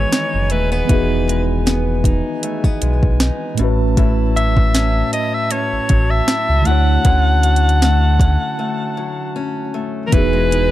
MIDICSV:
0, 0, Header, 1, 7, 480
1, 0, Start_track
1, 0, Key_signature, 4, "major"
1, 0, Tempo, 769231
1, 558, Time_signature, 4, 2, 24, 8
1, 6686, End_track
2, 0, Start_track
2, 0, Title_t, "Brass ensemble"
2, 0, Program_c, 0, 61
2, 0, Note_on_c, 0, 68, 72
2, 0, Note_on_c, 0, 71, 65
2, 0, Note_on_c, 0, 80, 80
2, 2214, Note_off_c, 0, 68, 0
2, 2214, Note_off_c, 0, 71, 0
2, 2214, Note_off_c, 0, 80, 0
2, 2240, Note_on_c, 0, 73, 70
2, 2240, Note_on_c, 0, 76, 70
2, 2240, Note_on_c, 0, 81, 85
2, 2241, Note_on_c, 0, 66, 79
2, 4140, Note_off_c, 0, 76, 0
2, 4162, Note_on_c, 0, 78, 72
2, 6211, Note_off_c, 0, 66, 0
2, 6211, Note_off_c, 0, 73, 0
2, 6211, Note_off_c, 0, 78, 0
2, 6211, Note_off_c, 0, 81, 0
2, 6318, Note_on_c, 0, 52, 72
2, 6319, Note_on_c, 0, 71, 68
2, 6319, Note_on_c, 0, 75, 68
2, 6319, Note_on_c, 0, 80, 83
2, 6686, Note_off_c, 0, 52, 0
2, 6686, Note_off_c, 0, 71, 0
2, 6686, Note_off_c, 0, 75, 0
2, 6686, Note_off_c, 0, 80, 0
2, 6686, End_track
3, 0, Start_track
3, 0, Title_t, "Alto saxophone"
3, 0, Program_c, 1, 65
3, 0, Note_on_c, 1, 73, 102
3, 322, Note_on_c, 1, 71, 87
3, 331, Note_off_c, 1, 73, 0
3, 447, Note_off_c, 1, 71, 0
3, 451, Note_on_c, 1, 71, 82
3, 904, Note_off_c, 1, 71, 0
3, 2722, Note_on_c, 1, 76, 95
3, 3175, Note_off_c, 1, 76, 0
3, 3203, Note_on_c, 1, 75, 87
3, 3333, Note_on_c, 1, 76, 91
3, 3342, Note_off_c, 1, 75, 0
3, 3441, Note_on_c, 1, 73, 94
3, 3451, Note_off_c, 1, 76, 0
3, 3809, Note_on_c, 1, 76, 100
3, 3819, Note_off_c, 1, 73, 0
3, 4160, Note_on_c, 1, 78, 122
3, 4170, Note_off_c, 1, 76, 0
3, 5839, Note_off_c, 1, 78, 0
3, 6282, Note_on_c, 1, 70, 86
3, 6320, Note_on_c, 1, 71, 122
3, 6329, Note_off_c, 1, 70, 0
3, 6686, Note_off_c, 1, 71, 0
3, 6686, End_track
4, 0, Start_track
4, 0, Title_t, "Tine electric piano"
4, 0, Program_c, 2, 4
4, 0, Control_c, 2, 64, 127
4, 0, Note_on_c, 2, 51, 68
4, 0, Note_on_c, 2, 52, 77
4, 0, Note_on_c, 2, 59, 66
4, 0, Note_on_c, 2, 66, 69
4, 0, Note_on_c, 2, 68, 81
4, 519, Note_off_c, 2, 52, 0
4, 526, Note_off_c, 2, 59, 0
4, 529, Note_on_c, 2, 52, 66
4, 534, Note_off_c, 2, 51, 0
4, 540, Note_off_c, 2, 66, 0
4, 543, Note_on_c, 2, 59, 59
4, 548, Note_off_c, 2, 68, 0
4, 556, Note_on_c, 2, 63, 57
4, 572, Note_on_c, 2, 66, 61
4, 586, Note_on_c, 2, 68, 71
4, 2199, Note_off_c, 2, 52, 0
4, 2206, Note_off_c, 2, 59, 0
4, 2212, Note_on_c, 2, 45, 75
4, 2213, Note_off_c, 2, 63, 0
4, 2220, Note_off_c, 2, 66, 0
4, 2227, Note_off_c, 2, 68, 0
4, 2227, Note_on_c, 2, 57, 75
4, 2242, Note_on_c, 2, 61, 72
4, 2246, Control_c, 2, 64, 0
4, 2256, Note_on_c, 2, 66, 71
4, 2271, Note_on_c, 2, 71, 86
4, 2358, Control_c, 2, 64, 127
4, 4121, Note_off_c, 2, 45, 0
4, 4128, Note_off_c, 2, 57, 0
4, 4130, Note_on_c, 2, 50, 67
4, 4135, Note_off_c, 2, 61, 0
4, 4142, Note_off_c, 2, 66, 0
4, 4144, Note_on_c, 2, 57, 62
4, 4150, Note_off_c, 2, 71, 0
4, 4159, Note_on_c, 2, 64, 58
4, 4167, Control_c, 2, 64, 0
4, 4173, Note_on_c, 2, 66, 61
4, 4188, Note_on_c, 2, 73, 76
4, 4270, Control_c, 2, 64, 127
4, 6039, Note_off_c, 2, 50, 0
4, 6046, Note_off_c, 2, 57, 0
4, 6054, Note_off_c, 2, 64, 0
4, 6061, Note_off_c, 2, 66, 0
4, 6068, Note_off_c, 2, 73, 0
4, 6289, Note_on_c, 2, 52, 63
4, 6303, Note_on_c, 2, 59, 60
4, 6317, Note_on_c, 2, 63, 63
4, 6325, Control_c, 2, 64, 0
4, 6331, Note_on_c, 2, 66, 58
4, 6346, Note_on_c, 2, 68, 73
4, 6444, Control_c, 2, 64, 127
4, 6686, Note_off_c, 2, 52, 0
4, 6686, Note_off_c, 2, 59, 0
4, 6686, Note_off_c, 2, 63, 0
4, 6686, Note_off_c, 2, 66, 0
4, 6686, Note_off_c, 2, 68, 0
4, 6686, End_track
5, 0, Start_track
5, 0, Title_t, "Steel-string acoustic guitar"
5, 0, Program_c, 3, 25
5, 0, Note_on_c, 3, 52, 87
5, 0, Note_on_c, 3, 56, 61
5, 0, Note_on_c, 3, 59, 62
5, 75, Note_on_c, 3, 63, 67
5, 312, Note_off_c, 3, 59, 0
5, 315, Note_on_c, 3, 57, 61
5, 447, Note_off_c, 3, 57, 0
5, 447, Note_on_c, 3, 59, 49
5, 553, Note_off_c, 3, 63, 0
5, 554, Note_off_c, 3, 52, 0
5, 556, Note_on_c, 3, 52, 83
5, 560, Note_on_c, 3, 63, 72
5, 790, Note_off_c, 3, 56, 0
5, 797, Note_on_c, 3, 56, 59
5, 1029, Note_off_c, 3, 59, 0
5, 1037, Note_on_c, 3, 59, 64
5, 1269, Note_off_c, 3, 63, 0
5, 1276, Note_on_c, 3, 63, 66
5, 1516, Note_off_c, 3, 59, 0
5, 1519, Note_on_c, 3, 57, 63
5, 1649, Note_off_c, 3, 57, 0
5, 1649, Note_on_c, 3, 59, 56
5, 1752, Note_off_c, 3, 56, 0
5, 1759, Note_on_c, 3, 56, 59
5, 1992, Note_off_c, 3, 63, 0
5, 1999, Note_on_c, 3, 63, 70
5, 2239, Note_on_c, 3, 45, 83
5, 2291, Note_off_c, 3, 56, 0
5, 2291, Note_off_c, 3, 59, 0
5, 2291, Note_off_c, 3, 63, 0
5, 2472, Note_off_c, 3, 45, 0
5, 2479, Note_on_c, 3, 45, 82
5, 2482, Note_on_c, 3, 64, 76
5, 2720, Note_on_c, 3, 54, 57
5, 2738, Note_off_c, 3, 52, 0
5, 2960, Note_on_c, 3, 61, 68
5, 3194, Note_off_c, 3, 64, 0
5, 3201, Note_on_c, 3, 64, 69
5, 3438, Note_off_c, 3, 61, 0
5, 3441, Note_on_c, 3, 61, 64
5, 3678, Note_off_c, 3, 54, 0
5, 3680, Note_on_c, 3, 54, 61
5, 3914, Note_off_c, 3, 64, 0
5, 3922, Note_on_c, 3, 64, 72
5, 4162, Note_on_c, 3, 50, 84
5, 4211, Note_off_c, 3, 45, 0
5, 4212, Note_off_c, 3, 64, 0
5, 4392, Note_off_c, 3, 50, 0
5, 4400, Note_on_c, 3, 50, 92
5, 4403, Note_off_c, 3, 61, 0
5, 4403, Note_on_c, 3, 61, 73
5, 4637, Note_off_c, 3, 54, 0
5, 4640, Note_on_c, 3, 54, 58
5, 4879, Note_on_c, 3, 57, 68
5, 5110, Note_off_c, 3, 61, 0
5, 5118, Note_on_c, 3, 61, 70
5, 5352, Note_off_c, 3, 57, 0
5, 5359, Note_on_c, 3, 57, 65
5, 5591, Note_off_c, 3, 54, 0
5, 5599, Note_on_c, 3, 54, 65
5, 5831, Note_off_c, 3, 61, 0
5, 5839, Note_on_c, 3, 61, 68
5, 6070, Note_off_c, 3, 57, 0
5, 6078, Note_on_c, 3, 57, 68
5, 6315, Note_off_c, 3, 50, 0
5, 6318, Note_on_c, 3, 52, 85
5, 6370, Note_off_c, 3, 54, 0
5, 6370, Note_off_c, 3, 57, 0
5, 6370, Note_off_c, 3, 61, 0
5, 6446, Note_on_c, 3, 56, 63
5, 6558, Note_on_c, 3, 63, 69
5, 6686, Note_off_c, 3, 52, 0
5, 6686, Note_off_c, 3, 56, 0
5, 6686, Note_off_c, 3, 63, 0
5, 6686, End_track
6, 0, Start_track
6, 0, Title_t, "Sub bass"
6, 0, Program_c, 4, 38
6, 211, Note_on_c, 4, 30, 90
6, 318, Note_on_c, 4, 27, 94
6, 328, Note_off_c, 4, 30, 0
6, 516, Note_off_c, 4, 27, 0
6, 559, Note_on_c, 4, 28, 114
6, 1384, Note_off_c, 4, 28, 0
6, 1649, Note_on_c, 4, 35, 50
6, 1693, Note_off_c, 4, 35, 0
6, 1759, Note_on_c, 4, 35, 92
6, 2064, Note_off_c, 4, 35, 0
6, 2242, Note_on_c, 4, 33, 103
6, 3140, Note_off_c, 4, 33, 0
6, 3571, Note_on_c, 4, 33, 50
6, 3614, Note_off_c, 4, 33, 0
6, 3682, Note_on_c, 4, 33, 87
6, 3879, Note_off_c, 4, 33, 0
6, 4049, Note_on_c, 4, 37, 89
6, 4140, Note_off_c, 4, 37, 0
6, 4158, Note_on_c, 4, 38, 102
6, 4356, Note_off_c, 4, 38, 0
6, 4400, Note_on_c, 4, 38, 105
6, 5224, Note_off_c, 4, 38, 0
6, 6319, Note_on_c, 4, 28, 115
6, 6686, Note_off_c, 4, 28, 0
6, 6686, End_track
7, 0, Start_track
7, 0, Title_t, "Drums"
7, 78, Note_on_c, 9, 38, 105
7, 81, Note_on_c, 9, 42, 68
7, 140, Note_off_c, 9, 38, 0
7, 144, Note_off_c, 9, 42, 0
7, 311, Note_on_c, 9, 42, 59
7, 373, Note_off_c, 9, 42, 0
7, 558, Note_on_c, 9, 36, 116
7, 558, Note_on_c, 9, 42, 69
7, 620, Note_off_c, 9, 36, 0
7, 620, Note_off_c, 9, 42, 0
7, 807, Note_on_c, 9, 42, 74
7, 870, Note_off_c, 9, 42, 0
7, 1041, Note_on_c, 9, 42, 64
7, 1042, Note_on_c, 9, 38, 108
7, 1103, Note_off_c, 9, 42, 0
7, 1104, Note_off_c, 9, 38, 0
7, 1274, Note_on_c, 9, 36, 105
7, 1281, Note_on_c, 9, 42, 73
7, 1336, Note_off_c, 9, 36, 0
7, 1343, Note_off_c, 9, 42, 0
7, 1516, Note_on_c, 9, 42, 84
7, 1579, Note_off_c, 9, 42, 0
7, 1647, Note_on_c, 9, 36, 87
7, 1710, Note_off_c, 9, 36, 0
7, 1758, Note_on_c, 9, 42, 69
7, 1820, Note_off_c, 9, 42, 0
7, 1890, Note_on_c, 9, 36, 103
7, 1952, Note_off_c, 9, 36, 0
7, 1997, Note_on_c, 9, 38, 114
7, 2001, Note_on_c, 9, 42, 69
7, 2060, Note_off_c, 9, 38, 0
7, 2063, Note_off_c, 9, 42, 0
7, 2231, Note_on_c, 9, 42, 57
7, 2294, Note_off_c, 9, 42, 0
7, 2479, Note_on_c, 9, 36, 116
7, 2479, Note_on_c, 9, 42, 68
7, 2541, Note_off_c, 9, 36, 0
7, 2541, Note_off_c, 9, 42, 0
7, 2727, Note_on_c, 9, 42, 72
7, 2790, Note_off_c, 9, 42, 0
7, 2850, Note_on_c, 9, 36, 95
7, 2912, Note_off_c, 9, 36, 0
7, 2961, Note_on_c, 9, 42, 67
7, 2962, Note_on_c, 9, 38, 114
7, 3023, Note_off_c, 9, 42, 0
7, 3024, Note_off_c, 9, 38, 0
7, 3201, Note_on_c, 9, 42, 71
7, 3263, Note_off_c, 9, 42, 0
7, 3436, Note_on_c, 9, 42, 83
7, 3498, Note_off_c, 9, 42, 0
7, 3676, Note_on_c, 9, 42, 69
7, 3680, Note_on_c, 9, 36, 100
7, 3738, Note_off_c, 9, 42, 0
7, 3743, Note_off_c, 9, 36, 0
7, 3918, Note_on_c, 9, 38, 112
7, 3921, Note_on_c, 9, 42, 67
7, 3980, Note_off_c, 9, 38, 0
7, 3983, Note_off_c, 9, 42, 0
7, 4152, Note_on_c, 9, 42, 55
7, 4214, Note_off_c, 9, 42, 0
7, 4397, Note_on_c, 9, 42, 70
7, 4399, Note_on_c, 9, 36, 117
7, 4460, Note_off_c, 9, 42, 0
7, 4461, Note_off_c, 9, 36, 0
7, 4639, Note_on_c, 9, 42, 71
7, 4701, Note_off_c, 9, 42, 0
7, 4719, Note_on_c, 9, 42, 58
7, 4782, Note_off_c, 9, 42, 0
7, 4798, Note_on_c, 9, 42, 42
7, 4861, Note_off_c, 9, 42, 0
7, 4880, Note_on_c, 9, 42, 63
7, 4881, Note_on_c, 9, 38, 117
7, 4943, Note_off_c, 9, 42, 0
7, 4944, Note_off_c, 9, 38, 0
7, 5114, Note_on_c, 9, 36, 107
7, 5121, Note_on_c, 9, 42, 74
7, 5176, Note_off_c, 9, 36, 0
7, 5183, Note_off_c, 9, 42, 0
7, 6317, Note_on_c, 9, 42, 73
7, 6318, Note_on_c, 9, 36, 117
7, 6380, Note_off_c, 9, 42, 0
7, 6381, Note_off_c, 9, 36, 0
7, 6566, Note_on_c, 9, 42, 74
7, 6629, Note_off_c, 9, 42, 0
7, 6686, End_track
0, 0, End_of_file